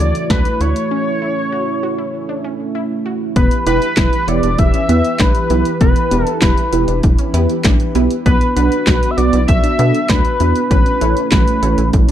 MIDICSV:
0, 0, Header, 1, 7, 480
1, 0, Start_track
1, 0, Tempo, 612245
1, 715, Time_signature, 4, 2, 24, 8
1, 9499, End_track
2, 0, Start_track
2, 0, Title_t, "Analog synth lead"
2, 0, Program_c, 0, 81
2, 1, Note_on_c, 0, 74, 105
2, 235, Note_off_c, 0, 74, 0
2, 240, Note_on_c, 0, 71, 99
2, 477, Note_on_c, 0, 73, 102
2, 489, Note_off_c, 0, 71, 0
2, 1916, Note_off_c, 0, 73, 0
2, 2636, Note_on_c, 0, 71, 91
2, 2859, Note_off_c, 0, 71, 0
2, 2875, Note_on_c, 0, 71, 93
2, 3355, Note_on_c, 0, 74, 104
2, 3367, Note_off_c, 0, 71, 0
2, 3594, Note_on_c, 0, 76, 116
2, 3605, Note_off_c, 0, 74, 0
2, 4074, Note_on_c, 0, 71, 99
2, 4086, Note_off_c, 0, 76, 0
2, 4551, Note_off_c, 0, 71, 0
2, 4555, Note_on_c, 0, 71, 96
2, 4900, Note_off_c, 0, 71, 0
2, 4900, Note_on_c, 0, 69, 96
2, 5004, Note_off_c, 0, 69, 0
2, 5036, Note_on_c, 0, 71, 78
2, 5484, Note_off_c, 0, 71, 0
2, 6475, Note_on_c, 0, 71, 96
2, 6698, Note_off_c, 0, 71, 0
2, 6714, Note_on_c, 0, 71, 92
2, 7139, Note_on_c, 0, 76, 76
2, 7151, Note_off_c, 0, 71, 0
2, 7191, Note_on_c, 0, 74, 104
2, 7202, Note_off_c, 0, 76, 0
2, 7427, Note_off_c, 0, 74, 0
2, 7431, Note_on_c, 0, 76, 113
2, 7911, Note_on_c, 0, 71, 100
2, 7923, Note_off_c, 0, 76, 0
2, 8387, Note_off_c, 0, 71, 0
2, 8392, Note_on_c, 0, 71, 97
2, 8842, Note_off_c, 0, 71, 0
2, 8873, Note_on_c, 0, 71, 82
2, 9323, Note_off_c, 0, 71, 0
2, 9499, End_track
3, 0, Start_track
3, 0, Title_t, "Analog polysynth"
3, 0, Program_c, 1, 90
3, 2875, Note_on_c, 1, 59, 80
3, 2875, Note_on_c, 1, 71, 83
3, 2876, Note_on_c, 1, 64, 71
3, 2876, Note_on_c, 1, 67, 73
3, 3033, Note_off_c, 1, 59, 0
3, 3033, Note_off_c, 1, 64, 0
3, 3033, Note_off_c, 1, 67, 0
3, 3033, Note_off_c, 1, 71, 0
3, 3356, Note_on_c, 1, 59, 75
3, 3357, Note_on_c, 1, 64, 71
3, 3357, Note_on_c, 1, 67, 71
3, 3357, Note_on_c, 1, 73, 84
3, 3513, Note_off_c, 1, 59, 0
3, 3513, Note_off_c, 1, 67, 0
3, 3513, Note_off_c, 1, 73, 0
3, 3514, Note_off_c, 1, 64, 0
3, 3835, Note_on_c, 1, 64, 71
3, 3835, Note_on_c, 1, 67, 73
3, 3836, Note_on_c, 1, 59, 75
3, 3836, Note_on_c, 1, 71, 84
3, 3993, Note_off_c, 1, 59, 0
3, 3993, Note_off_c, 1, 64, 0
3, 3993, Note_off_c, 1, 67, 0
3, 3993, Note_off_c, 1, 71, 0
3, 4314, Note_on_c, 1, 64, 70
3, 4314, Note_on_c, 1, 67, 72
3, 4314, Note_on_c, 1, 71, 86
3, 4315, Note_on_c, 1, 59, 75
3, 4472, Note_off_c, 1, 59, 0
3, 4472, Note_off_c, 1, 64, 0
3, 4472, Note_off_c, 1, 67, 0
3, 4472, Note_off_c, 1, 71, 0
3, 4793, Note_on_c, 1, 59, 77
3, 4793, Note_on_c, 1, 64, 72
3, 4794, Note_on_c, 1, 67, 73
3, 4794, Note_on_c, 1, 71, 86
3, 4952, Note_off_c, 1, 59, 0
3, 4952, Note_off_c, 1, 64, 0
3, 4952, Note_off_c, 1, 67, 0
3, 4952, Note_off_c, 1, 71, 0
3, 5274, Note_on_c, 1, 59, 73
3, 5274, Note_on_c, 1, 64, 70
3, 5274, Note_on_c, 1, 67, 70
3, 5274, Note_on_c, 1, 71, 85
3, 5432, Note_off_c, 1, 59, 0
3, 5432, Note_off_c, 1, 64, 0
3, 5432, Note_off_c, 1, 67, 0
3, 5432, Note_off_c, 1, 71, 0
3, 5753, Note_on_c, 1, 64, 81
3, 5754, Note_on_c, 1, 59, 92
3, 5754, Note_on_c, 1, 67, 85
3, 5754, Note_on_c, 1, 71, 103
3, 5912, Note_off_c, 1, 59, 0
3, 5912, Note_off_c, 1, 64, 0
3, 5912, Note_off_c, 1, 67, 0
3, 5912, Note_off_c, 1, 71, 0
3, 6234, Note_on_c, 1, 59, 88
3, 6234, Note_on_c, 1, 64, 84
3, 6234, Note_on_c, 1, 67, 85
3, 6235, Note_on_c, 1, 71, 100
3, 6392, Note_off_c, 1, 59, 0
3, 6392, Note_off_c, 1, 64, 0
3, 6392, Note_off_c, 1, 67, 0
3, 6393, Note_off_c, 1, 71, 0
3, 6715, Note_on_c, 1, 59, 78
3, 6715, Note_on_c, 1, 62, 75
3, 6715, Note_on_c, 1, 71, 88
3, 6716, Note_on_c, 1, 66, 74
3, 6873, Note_off_c, 1, 59, 0
3, 6873, Note_off_c, 1, 62, 0
3, 6873, Note_off_c, 1, 66, 0
3, 6873, Note_off_c, 1, 71, 0
3, 7193, Note_on_c, 1, 59, 78
3, 7194, Note_on_c, 1, 62, 69
3, 7194, Note_on_c, 1, 66, 71
3, 7194, Note_on_c, 1, 71, 83
3, 7352, Note_off_c, 1, 59, 0
3, 7352, Note_off_c, 1, 62, 0
3, 7352, Note_off_c, 1, 66, 0
3, 7352, Note_off_c, 1, 71, 0
3, 7675, Note_on_c, 1, 59, 74
3, 7675, Note_on_c, 1, 62, 70
3, 7675, Note_on_c, 1, 66, 72
3, 7675, Note_on_c, 1, 69, 85
3, 7833, Note_off_c, 1, 59, 0
3, 7833, Note_off_c, 1, 62, 0
3, 7833, Note_off_c, 1, 66, 0
3, 7833, Note_off_c, 1, 69, 0
3, 8155, Note_on_c, 1, 71, 85
3, 8156, Note_on_c, 1, 59, 76
3, 8156, Note_on_c, 1, 62, 69
3, 8156, Note_on_c, 1, 66, 71
3, 8313, Note_off_c, 1, 59, 0
3, 8313, Note_off_c, 1, 62, 0
3, 8313, Note_off_c, 1, 66, 0
3, 8313, Note_off_c, 1, 71, 0
3, 8635, Note_on_c, 1, 61, 80
3, 8635, Note_on_c, 1, 64, 73
3, 8635, Note_on_c, 1, 69, 72
3, 8635, Note_on_c, 1, 73, 87
3, 8793, Note_off_c, 1, 61, 0
3, 8793, Note_off_c, 1, 64, 0
3, 8793, Note_off_c, 1, 69, 0
3, 8793, Note_off_c, 1, 73, 0
3, 9114, Note_on_c, 1, 61, 76
3, 9114, Note_on_c, 1, 69, 68
3, 9115, Note_on_c, 1, 64, 70
3, 9115, Note_on_c, 1, 73, 86
3, 9272, Note_off_c, 1, 61, 0
3, 9272, Note_off_c, 1, 69, 0
3, 9273, Note_off_c, 1, 64, 0
3, 9273, Note_off_c, 1, 73, 0
3, 9499, End_track
4, 0, Start_track
4, 0, Title_t, "Analog synth pad"
4, 0, Program_c, 2, 89
4, 0, Note_on_c, 2, 52, 75
4, 0, Note_on_c, 2, 57, 69
4, 0, Note_on_c, 2, 64, 71
4, 0, Note_on_c, 2, 66, 84
4, 696, Note_off_c, 2, 52, 0
4, 696, Note_off_c, 2, 66, 0
4, 713, Note_on_c, 2, 61, 69
4, 2604, Note_off_c, 2, 57, 0
4, 2604, Note_off_c, 2, 64, 0
4, 2615, Note_off_c, 2, 61, 0
4, 2635, Note_on_c, 2, 52, 78
4, 2636, Note_on_c, 2, 64, 72
4, 2636, Note_on_c, 2, 67, 71
4, 2636, Note_on_c, 2, 71, 87
4, 6444, Note_off_c, 2, 52, 0
4, 6444, Note_off_c, 2, 64, 0
4, 6444, Note_off_c, 2, 67, 0
4, 6444, Note_off_c, 2, 71, 0
4, 6474, Note_on_c, 2, 59, 78
4, 6474, Note_on_c, 2, 66, 86
4, 6475, Note_on_c, 2, 62, 72
4, 8375, Note_off_c, 2, 66, 0
4, 8376, Note_off_c, 2, 59, 0
4, 8376, Note_off_c, 2, 62, 0
4, 8394, Note_on_c, 2, 57, 78
4, 8394, Note_on_c, 2, 64, 89
4, 8395, Note_on_c, 2, 61, 74
4, 9499, Note_off_c, 2, 57, 0
4, 9499, Note_off_c, 2, 61, 0
4, 9499, Note_off_c, 2, 64, 0
4, 9499, End_track
5, 0, Start_track
5, 0, Title_t, "Synth pluck"
5, 0, Program_c, 3, 84
5, 0, Note_on_c, 3, 49, 80
5, 124, Note_off_c, 3, 49, 0
5, 236, Note_on_c, 3, 62, 83
5, 364, Note_off_c, 3, 62, 0
5, 476, Note_on_c, 3, 64, 80
5, 605, Note_off_c, 3, 64, 0
5, 715, Note_on_c, 3, 61, 91
5, 844, Note_off_c, 3, 61, 0
5, 955, Note_on_c, 3, 64, 79
5, 1084, Note_off_c, 3, 64, 0
5, 1195, Note_on_c, 3, 66, 84
5, 1324, Note_off_c, 3, 66, 0
5, 1436, Note_on_c, 3, 66, 78
5, 1500, Note_off_c, 3, 66, 0
5, 1556, Note_on_c, 3, 64, 73
5, 1685, Note_off_c, 3, 64, 0
5, 1795, Note_on_c, 3, 62, 76
5, 1860, Note_off_c, 3, 62, 0
5, 1917, Note_on_c, 3, 61, 78
5, 2045, Note_off_c, 3, 61, 0
5, 2156, Note_on_c, 3, 64, 85
5, 2285, Note_off_c, 3, 64, 0
5, 2396, Note_on_c, 3, 66, 81
5, 2525, Note_off_c, 3, 66, 0
5, 2637, Note_on_c, 3, 59, 99
5, 2765, Note_off_c, 3, 59, 0
5, 2876, Note_on_c, 3, 62, 81
5, 3005, Note_off_c, 3, 62, 0
5, 3116, Note_on_c, 3, 64, 87
5, 3245, Note_off_c, 3, 64, 0
5, 3355, Note_on_c, 3, 64, 80
5, 3420, Note_off_c, 3, 64, 0
5, 3476, Note_on_c, 3, 62, 76
5, 3605, Note_off_c, 3, 62, 0
5, 3717, Note_on_c, 3, 61, 75
5, 3781, Note_off_c, 3, 61, 0
5, 3837, Note_on_c, 3, 59, 82
5, 3965, Note_off_c, 3, 59, 0
5, 4076, Note_on_c, 3, 62, 91
5, 4205, Note_off_c, 3, 62, 0
5, 4316, Note_on_c, 3, 64, 82
5, 4445, Note_off_c, 3, 64, 0
5, 4556, Note_on_c, 3, 59, 95
5, 4685, Note_off_c, 3, 59, 0
5, 4795, Note_on_c, 3, 62, 84
5, 4924, Note_off_c, 3, 62, 0
5, 5034, Note_on_c, 3, 64, 89
5, 5164, Note_off_c, 3, 64, 0
5, 5274, Note_on_c, 3, 64, 78
5, 5339, Note_off_c, 3, 64, 0
5, 5393, Note_on_c, 3, 62, 74
5, 5523, Note_off_c, 3, 62, 0
5, 5635, Note_on_c, 3, 61, 74
5, 5699, Note_off_c, 3, 61, 0
5, 5755, Note_on_c, 3, 59, 82
5, 5884, Note_off_c, 3, 59, 0
5, 5995, Note_on_c, 3, 62, 88
5, 6124, Note_off_c, 3, 62, 0
5, 6234, Note_on_c, 3, 64, 82
5, 6364, Note_off_c, 3, 64, 0
5, 6474, Note_on_c, 3, 59, 102
5, 6603, Note_off_c, 3, 59, 0
5, 6714, Note_on_c, 3, 62, 81
5, 6844, Note_off_c, 3, 62, 0
5, 6955, Note_on_c, 3, 66, 89
5, 7084, Note_off_c, 3, 66, 0
5, 7195, Note_on_c, 3, 66, 77
5, 7260, Note_off_c, 3, 66, 0
5, 7315, Note_on_c, 3, 64, 77
5, 7444, Note_off_c, 3, 64, 0
5, 7555, Note_on_c, 3, 62, 77
5, 7619, Note_off_c, 3, 62, 0
5, 7675, Note_on_c, 3, 59, 80
5, 7804, Note_off_c, 3, 59, 0
5, 7915, Note_on_c, 3, 62, 88
5, 8044, Note_off_c, 3, 62, 0
5, 8154, Note_on_c, 3, 64, 80
5, 8283, Note_off_c, 3, 64, 0
5, 8395, Note_on_c, 3, 61, 100
5, 8524, Note_off_c, 3, 61, 0
5, 8634, Note_on_c, 3, 64, 80
5, 8764, Note_off_c, 3, 64, 0
5, 8874, Note_on_c, 3, 66, 88
5, 9004, Note_off_c, 3, 66, 0
5, 9114, Note_on_c, 3, 66, 83
5, 9179, Note_off_c, 3, 66, 0
5, 9234, Note_on_c, 3, 64, 74
5, 9364, Note_off_c, 3, 64, 0
5, 9475, Note_on_c, 3, 62, 74
5, 9499, Note_off_c, 3, 62, 0
5, 9499, End_track
6, 0, Start_track
6, 0, Title_t, "Analog synth bass"
6, 0, Program_c, 4, 38
6, 0, Note_on_c, 4, 38, 96
6, 97, Note_off_c, 4, 38, 0
6, 237, Note_on_c, 4, 38, 105
6, 338, Note_off_c, 4, 38, 0
6, 475, Note_on_c, 4, 38, 101
6, 577, Note_off_c, 4, 38, 0
6, 2635, Note_on_c, 4, 28, 107
6, 2737, Note_off_c, 4, 28, 0
6, 2874, Note_on_c, 4, 28, 98
6, 2976, Note_off_c, 4, 28, 0
6, 3115, Note_on_c, 4, 28, 99
6, 3217, Note_off_c, 4, 28, 0
6, 3353, Note_on_c, 4, 28, 99
6, 3455, Note_off_c, 4, 28, 0
6, 3473, Note_on_c, 4, 28, 96
6, 3576, Note_off_c, 4, 28, 0
6, 3597, Note_on_c, 4, 28, 112
6, 3698, Note_off_c, 4, 28, 0
6, 3833, Note_on_c, 4, 40, 109
6, 3936, Note_off_c, 4, 40, 0
6, 4076, Note_on_c, 4, 33, 103
6, 4177, Note_off_c, 4, 33, 0
6, 4313, Note_on_c, 4, 35, 100
6, 4416, Note_off_c, 4, 35, 0
6, 4554, Note_on_c, 4, 28, 114
6, 4656, Note_off_c, 4, 28, 0
6, 4795, Note_on_c, 4, 28, 102
6, 4896, Note_off_c, 4, 28, 0
6, 5035, Note_on_c, 4, 28, 104
6, 5137, Note_off_c, 4, 28, 0
6, 5273, Note_on_c, 4, 28, 96
6, 5376, Note_off_c, 4, 28, 0
6, 5393, Note_on_c, 4, 28, 107
6, 5496, Note_off_c, 4, 28, 0
6, 5516, Note_on_c, 4, 28, 109
6, 5617, Note_off_c, 4, 28, 0
6, 5753, Note_on_c, 4, 40, 103
6, 5855, Note_off_c, 4, 40, 0
6, 5996, Note_on_c, 4, 33, 97
6, 6097, Note_off_c, 4, 33, 0
6, 6234, Note_on_c, 4, 35, 102
6, 6336, Note_off_c, 4, 35, 0
6, 6475, Note_on_c, 4, 35, 114
6, 6577, Note_off_c, 4, 35, 0
6, 6715, Note_on_c, 4, 35, 104
6, 6817, Note_off_c, 4, 35, 0
6, 6956, Note_on_c, 4, 35, 103
6, 7057, Note_off_c, 4, 35, 0
6, 7196, Note_on_c, 4, 35, 96
6, 7297, Note_off_c, 4, 35, 0
6, 7316, Note_on_c, 4, 35, 102
6, 7417, Note_off_c, 4, 35, 0
6, 7438, Note_on_c, 4, 35, 109
6, 7538, Note_off_c, 4, 35, 0
6, 7677, Note_on_c, 4, 47, 110
6, 7778, Note_off_c, 4, 47, 0
6, 7917, Note_on_c, 4, 38, 93
6, 8018, Note_off_c, 4, 38, 0
6, 8156, Note_on_c, 4, 40, 93
6, 8257, Note_off_c, 4, 40, 0
6, 8395, Note_on_c, 4, 33, 114
6, 8497, Note_off_c, 4, 33, 0
6, 8637, Note_on_c, 4, 33, 97
6, 8738, Note_off_c, 4, 33, 0
6, 8876, Note_on_c, 4, 33, 109
6, 8977, Note_off_c, 4, 33, 0
6, 9115, Note_on_c, 4, 33, 97
6, 9216, Note_off_c, 4, 33, 0
6, 9234, Note_on_c, 4, 33, 100
6, 9336, Note_off_c, 4, 33, 0
6, 9357, Note_on_c, 4, 33, 117
6, 9458, Note_off_c, 4, 33, 0
6, 9499, End_track
7, 0, Start_track
7, 0, Title_t, "Drums"
7, 0, Note_on_c, 9, 42, 73
7, 75, Note_off_c, 9, 42, 0
7, 118, Note_on_c, 9, 42, 45
7, 196, Note_off_c, 9, 42, 0
7, 235, Note_on_c, 9, 38, 103
7, 235, Note_on_c, 9, 42, 73
7, 238, Note_on_c, 9, 36, 111
7, 314, Note_off_c, 9, 38, 0
7, 314, Note_off_c, 9, 42, 0
7, 316, Note_off_c, 9, 36, 0
7, 355, Note_on_c, 9, 42, 48
7, 434, Note_off_c, 9, 42, 0
7, 475, Note_on_c, 9, 42, 64
7, 554, Note_off_c, 9, 42, 0
7, 596, Note_on_c, 9, 42, 53
7, 674, Note_off_c, 9, 42, 0
7, 2634, Note_on_c, 9, 42, 62
7, 2635, Note_on_c, 9, 36, 109
7, 2713, Note_off_c, 9, 36, 0
7, 2713, Note_off_c, 9, 42, 0
7, 2754, Note_on_c, 9, 42, 45
7, 2832, Note_off_c, 9, 42, 0
7, 2874, Note_on_c, 9, 42, 75
7, 2952, Note_off_c, 9, 42, 0
7, 2994, Note_on_c, 9, 42, 48
7, 3072, Note_off_c, 9, 42, 0
7, 3112, Note_on_c, 9, 38, 113
7, 3112, Note_on_c, 9, 39, 89
7, 3115, Note_on_c, 9, 42, 83
7, 3116, Note_on_c, 9, 36, 116
7, 3191, Note_off_c, 9, 38, 0
7, 3191, Note_off_c, 9, 39, 0
7, 3193, Note_off_c, 9, 42, 0
7, 3194, Note_off_c, 9, 36, 0
7, 3237, Note_on_c, 9, 42, 49
7, 3315, Note_off_c, 9, 42, 0
7, 3355, Note_on_c, 9, 42, 74
7, 3434, Note_off_c, 9, 42, 0
7, 3474, Note_on_c, 9, 42, 54
7, 3553, Note_off_c, 9, 42, 0
7, 3594, Note_on_c, 9, 42, 65
7, 3596, Note_on_c, 9, 36, 102
7, 3673, Note_off_c, 9, 42, 0
7, 3675, Note_off_c, 9, 36, 0
7, 3715, Note_on_c, 9, 42, 54
7, 3793, Note_off_c, 9, 42, 0
7, 3835, Note_on_c, 9, 42, 81
7, 3914, Note_off_c, 9, 42, 0
7, 3956, Note_on_c, 9, 42, 46
7, 4034, Note_off_c, 9, 42, 0
7, 4073, Note_on_c, 9, 38, 109
7, 4073, Note_on_c, 9, 39, 89
7, 4073, Note_on_c, 9, 42, 81
7, 4076, Note_on_c, 9, 36, 122
7, 4152, Note_off_c, 9, 38, 0
7, 4152, Note_off_c, 9, 39, 0
7, 4152, Note_off_c, 9, 42, 0
7, 4154, Note_off_c, 9, 36, 0
7, 4192, Note_on_c, 9, 42, 49
7, 4270, Note_off_c, 9, 42, 0
7, 4312, Note_on_c, 9, 42, 71
7, 4391, Note_off_c, 9, 42, 0
7, 4432, Note_on_c, 9, 42, 55
7, 4511, Note_off_c, 9, 42, 0
7, 4553, Note_on_c, 9, 42, 67
7, 4554, Note_on_c, 9, 36, 112
7, 4631, Note_off_c, 9, 42, 0
7, 4632, Note_off_c, 9, 36, 0
7, 4672, Note_on_c, 9, 42, 45
7, 4750, Note_off_c, 9, 42, 0
7, 4793, Note_on_c, 9, 42, 78
7, 4872, Note_off_c, 9, 42, 0
7, 4913, Note_on_c, 9, 42, 50
7, 4992, Note_off_c, 9, 42, 0
7, 5031, Note_on_c, 9, 38, 115
7, 5031, Note_on_c, 9, 39, 94
7, 5033, Note_on_c, 9, 42, 85
7, 5035, Note_on_c, 9, 36, 118
7, 5109, Note_off_c, 9, 38, 0
7, 5109, Note_off_c, 9, 39, 0
7, 5112, Note_off_c, 9, 42, 0
7, 5113, Note_off_c, 9, 36, 0
7, 5155, Note_on_c, 9, 42, 49
7, 5234, Note_off_c, 9, 42, 0
7, 5273, Note_on_c, 9, 42, 77
7, 5352, Note_off_c, 9, 42, 0
7, 5393, Note_on_c, 9, 42, 56
7, 5471, Note_off_c, 9, 42, 0
7, 5514, Note_on_c, 9, 42, 63
7, 5516, Note_on_c, 9, 36, 105
7, 5592, Note_off_c, 9, 42, 0
7, 5594, Note_off_c, 9, 36, 0
7, 5633, Note_on_c, 9, 42, 55
7, 5712, Note_off_c, 9, 42, 0
7, 5755, Note_on_c, 9, 42, 82
7, 5833, Note_off_c, 9, 42, 0
7, 5876, Note_on_c, 9, 42, 47
7, 5955, Note_off_c, 9, 42, 0
7, 5994, Note_on_c, 9, 38, 109
7, 5994, Note_on_c, 9, 39, 89
7, 5994, Note_on_c, 9, 42, 78
7, 5996, Note_on_c, 9, 36, 119
7, 6072, Note_off_c, 9, 38, 0
7, 6072, Note_off_c, 9, 39, 0
7, 6072, Note_off_c, 9, 42, 0
7, 6075, Note_off_c, 9, 36, 0
7, 6114, Note_on_c, 9, 42, 49
7, 6192, Note_off_c, 9, 42, 0
7, 6233, Note_on_c, 9, 42, 69
7, 6312, Note_off_c, 9, 42, 0
7, 6355, Note_on_c, 9, 42, 55
7, 6433, Note_off_c, 9, 42, 0
7, 6475, Note_on_c, 9, 36, 114
7, 6475, Note_on_c, 9, 42, 64
7, 6553, Note_off_c, 9, 36, 0
7, 6554, Note_off_c, 9, 42, 0
7, 6594, Note_on_c, 9, 42, 45
7, 6673, Note_off_c, 9, 42, 0
7, 6715, Note_on_c, 9, 42, 76
7, 6794, Note_off_c, 9, 42, 0
7, 6835, Note_on_c, 9, 42, 50
7, 6914, Note_off_c, 9, 42, 0
7, 6954, Note_on_c, 9, 38, 114
7, 6954, Note_on_c, 9, 39, 92
7, 6956, Note_on_c, 9, 36, 116
7, 6956, Note_on_c, 9, 42, 81
7, 7032, Note_off_c, 9, 38, 0
7, 7032, Note_off_c, 9, 39, 0
7, 7034, Note_off_c, 9, 36, 0
7, 7035, Note_off_c, 9, 42, 0
7, 7078, Note_on_c, 9, 42, 49
7, 7156, Note_off_c, 9, 42, 0
7, 7196, Note_on_c, 9, 42, 74
7, 7274, Note_off_c, 9, 42, 0
7, 7315, Note_on_c, 9, 42, 54
7, 7394, Note_off_c, 9, 42, 0
7, 7435, Note_on_c, 9, 42, 66
7, 7437, Note_on_c, 9, 36, 108
7, 7514, Note_off_c, 9, 42, 0
7, 7516, Note_off_c, 9, 36, 0
7, 7555, Note_on_c, 9, 42, 55
7, 7633, Note_off_c, 9, 42, 0
7, 7675, Note_on_c, 9, 42, 79
7, 7754, Note_off_c, 9, 42, 0
7, 7797, Note_on_c, 9, 42, 46
7, 7876, Note_off_c, 9, 42, 0
7, 7915, Note_on_c, 9, 38, 109
7, 7915, Note_on_c, 9, 39, 92
7, 7915, Note_on_c, 9, 42, 82
7, 7917, Note_on_c, 9, 36, 117
7, 7993, Note_off_c, 9, 38, 0
7, 7993, Note_off_c, 9, 39, 0
7, 7993, Note_off_c, 9, 42, 0
7, 7996, Note_off_c, 9, 36, 0
7, 8034, Note_on_c, 9, 42, 49
7, 8112, Note_off_c, 9, 42, 0
7, 8154, Note_on_c, 9, 42, 69
7, 8233, Note_off_c, 9, 42, 0
7, 8275, Note_on_c, 9, 42, 56
7, 8354, Note_off_c, 9, 42, 0
7, 8395, Note_on_c, 9, 36, 106
7, 8395, Note_on_c, 9, 42, 62
7, 8474, Note_off_c, 9, 36, 0
7, 8474, Note_off_c, 9, 42, 0
7, 8514, Note_on_c, 9, 42, 44
7, 8593, Note_off_c, 9, 42, 0
7, 8635, Note_on_c, 9, 42, 76
7, 8713, Note_off_c, 9, 42, 0
7, 8755, Note_on_c, 9, 42, 50
7, 8833, Note_off_c, 9, 42, 0
7, 8872, Note_on_c, 9, 38, 112
7, 8872, Note_on_c, 9, 39, 92
7, 8875, Note_on_c, 9, 42, 84
7, 8876, Note_on_c, 9, 36, 115
7, 8951, Note_off_c, 9, 38, 0
7, 8951, Note_off_c, 9, 39, 0
7, 8953, Note_off_c, 9, 42, 0
7, 8954, Note_off_c, 9, 36, 0
7, 8997, Note_on_c, 9, 42, 50
7, 9075, Note_off_c, 9, 42, 0
7, 9115, Note_on_c, 9, 42, 72
7, 9194, Note_off_c, 9, 42, 0
7, 9235, Note_on_c, 9, 42, 57
7, 9313, Note_off_c, 9, 42, 0
7, 9356, Note_on_c, 9, 42, 63
7, 9357, Note_on_c, 9, 36, 104
7, 9434, Note_off_c, 9, 42, 0
7, 9436, Note_off_c, 9, 36, 0
7, 9475, Note_on_c, 9, 42, 57
7, 9499, Note_off_c, 9, 42, 0
7, 9499, End_track
0, 0, End_of_file